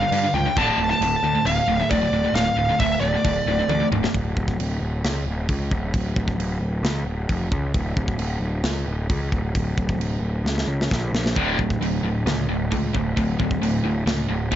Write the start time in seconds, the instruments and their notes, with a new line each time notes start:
Already playing: lead electric guitar F5
0.02 distorted electric guitar G2 D3
0.11 picked electric bass G2, distorted electric guitar G2 D3, china
0.24 distorted electric guitar G2 D3
0.34 picked electric bass C#2, distorted electric guitar G2 D3, lead electric guitar G5
0.46 distorted electric guitar G2 D3
0.56 picked electric bass D1, distorted electric guitar D2 A2 D3, lead electric guitar A5, kick, china
0.78 picked electric bass D1, distorted electric guitar D2 A2
0.90 distorted electric guitar D2 A2, lead electric guitar A5
1.01 picked electric bass D1, distorted electric guitar D2 A2, china
1.23 picked electric bass D2, distorted electric guitar D2 A2
1.35 distorted electric guitar D2 A2
1.45 picked electric bass D1, distorted electric guitar D2 A2, lead electric guitar F5, china
1.67 picked electric bass D1, distorted electric guitar D2 A2
1.80 distorted electric guitar D2 A2
1.90 picked electric bass D1, distorted electric guitar D2 A2, lead electric guitar D5, kick, china
2.01 distorted electric guitar D2 A2
2.11 picked electric bass D1, distorted electric guitar D2 A2
2.24 distorted electric guitar D2 A2
2.34 picked electric bass D1, distorted electric guitar D2 A2, lead electric guitar F5, snare, china
2.56 picked electric bass D1, distorted electric guitar D2 A2
2.69 distorted electric guitar D2 A2
2.80 picked electric bass D1, distorted electric guitar D2 A2, lead electric guitar E5, kick, china
3.01 picked electric bass D1, distorted electric guitar D2 A2, lead electric guitar D5
3.14 distorted electric guitar D2 A2
3.24 picked electric bass D1, distorted electric guitar D2 A2, kick, china
3.46 picked electric bass D1, distorted electric guitar D2 A2
3.59 distorted electric guitar D2 A2
3.68 picked electric bass D2, distorted electric guitar D2 A2, high tom
3.80 distorted electric guitar D2 A2
3.91 picked electric bass D1, distorted electric guitar D2 A2, mid tom
4.03 distorted electric guitar D2 A2, snare
4.14 picked electric bass D1, kick, china
4.36 picked electric bass D1, kick
4.48 kick
4.59 picked electric bass D1, china
4.81 picked electric bass D1
5.04 picked electric bass C#2, snare, china
5.26 picked electric bass D1
5.49 picked electric bass C#2, kick, china
5.71 picked electric bass D1, kick
5.94 picked electric bass D1, kick, china
6.16 picked electric bass D1, kick
6.28 kick
6.38 picked electric bass D1, china
6.60 picked electric bass D1
6.83 picked electric bass C#2, snare, china
7.05 picked electric bass D1
7.29 picked electric bass F1, kick, china
7.51 picked electric bass C#2, kick
7.74 picked electric bass D1, kick, china
7.96 picked electric bass D1, kick
8.08 kick
8.18 picked electric bass D1, china
8.40 picked electric bass D1
8.63 picked electric bass C#2, snare, china
8.86 picked electric bass D1
9.09 picked electric bass C#2, kick, china
9.32 picked electric bass D1, kick
9.55 picked electric bass D1, kick, china
9.77 picked electric bass D1, kick
9.89 kick
9.98 picked electric bass D1, china
10.20 picked electric bass D1
10.44 picked electric bass C#2, snare
10.58 snare
10.67 picked electric bass C#2
10.81 snare
10.91 picked electric bass A#1, kick, snare
11.13 picked electric bass A#1, snare
11.26 snare
11.36 picked electric bass D1, distorted electric guitar D2 A2 D3, kick, china
11.59 picked electric bass D1, distorted electric guitar D2 A2, kick
11.70 kick
11.80 picked electric bass D1, distorted electric guitar D2 A2, china
12.03 picked electric bass D1, distorted electric guitar D2 A2
12.26 picked electric bass C#2, distorted electric guitar D2 A2, snare, china
12.48 picked electric bass D1, distorted electric guitar D2 A2
12.71 picked electric bass C#2, distorted electric guitar D2 A2, kick, china
12.93 picked electric bass D1, distorted electric guitar D2 A2, kick
13.17 picked electric bass D1, distorted electric guitar D2 A2, kick, china
13.39 picked electric bass D1, distorted electric guitar D2 A2, kick
13.51 kick
13.61 picked electric bass D1, distorted electric guitar D2 A2, china
13.83 picked electric bass D1, distorted electric guitar D2 A2
14.06 picked electric bass C#2, distorted electric guitar D2 A2, snare, china
14.28 picked electric bass D1, distorted electric guitar D2 A2
14.51 picked electric bass F1, distorted electric guitar F2 C3, kick, china